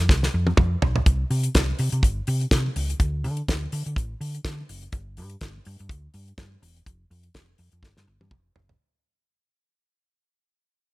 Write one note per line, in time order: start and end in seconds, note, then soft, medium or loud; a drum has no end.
0.09 0.26 C2 loud
0.09 kick loud
0.09 snare medium
0.23 snare medium
0.34 0.51 F2 medium
0.47 high tom medium
0.57 0.75 F2 medium
0.57 kick loud
0.57 mid tom loud
0.82 0.99 B1 medium
0.82 floor tom loud
0.96 floor tom loud
1.06 1.23 C2 medium
1.06 kick loud
1.06 closed hi-hat medium
1.30 1.47 C3 loud
1.30 open hi-hat medium
1.43 closed hi-hat medium
1.55 1.72 C2 medium
1.55 kick loud
1.55 snare loud
1.55 closed hi-hat medium
1.79 1.88 C3 loud
1.79 open hi-hat medium
1.92 2.00 C3 medium
1.92 closed hi-hat soft
2.03 2.20 G1 medium
2.03 kick loud
2.03 closed hi-hat medium
2.27 2.44 C3 loud
2.27 open hi-hat medium
2.41 closed hi-hat soft
2.51 2.68 C3 medium
2.51 kick loud
2.51 snare loud
2.51 closed hi-hat medium
2.76 2.93 C#2 medium
2.76 open hi-hat medium
2.90 closed hi-hat soft
3.00 3.26 D2 loud
3.00 kick loud
3.00 closed hi-hat medium
3.24 3.41 D3 loud
3.24 open hi-hat soft
3.37 closed hi-hat soft
3.48 3.65 D2 medium
3.48 kick loud
3.48 snare loud
3.48 closed hi-hat medium
3.72 3.82 D3 loud
3.72 open hi-hat medium
3.86 3.93 D3 medium
3.86 closed hi-hat soft
3.96 4.13 A1 medium
3.96 kick loud
3.96 closed hi-hat medium
4.21 4.37 D3 medium
4.21 open hi-hat medium
4.35 closed hi-hat soft
4.45 4.62 D3 medium
4.45 kick loud
4.45 snare loud
4.45 closed hi-hat medium
4.69 4.86 F#1 medium
4.69 open hi-hat medium
4.83 closed hi-hat soft
4.92 5.19 G1 medium
4.92 kick loud
4.92 closed hi-hat medium
5.17 5.35 G2 loud
5.17 open hi-hat medium
5.30 closed hi-hat soft
5.41 5.58 G1 loud
5.41 kick loud
5.41 snare medium
5.41 closed hi-hat medium
5.65 5.76 G2 loud
5.65 open hi-hat medium
5.79 5.87 G2 medium
5.79 closed hi-hat soft
5.89 6.06 D2 medium
5.89 kick loud
5.89 closed hi-hat medium
6.14 6.31 G2 loud
6.14 open hi-hat medium
6.28 closed hi-hat soft
6.38 6.55 G2 medium
6.38 kick loud
6.38 snare loud
6.38 closed hi-hat medium
6.62 6.79 E1 loud
6.62 open hi-hat medium
6.76 closed hi-hat soft
6.86 7.04 F1 medium
6.86 kick loud
6.86 closed hi-hat medium
7.11 7.27 F2 loud
7.11 open hi-hat soft
7.23 closed hi-hat soft
7.34 7.52 F1 medium
7.34 kick loud
7.34 snare loud
7.34 closed hi-hat medium
7.58 7.68 F2 loud
7.58 open hi-hat medium
7.72 7.80 F2 medium
7.72 closed hi-hat soft
7.83 7.92 G1 loud
7.83 kick loud
7.83 snare medium
7.97 8.04 G2 loud
7.97 snare medium
8.08 8.17 G1 loud
8.21 8.28 G2 medium
8.21 high tom medium
8.31 8.48 F1 medium
8.31 kick loud
8.31 mid tom medium
8.56 8.73 F#1 medium
8.56 floor tom loud
8.69 floor tom medium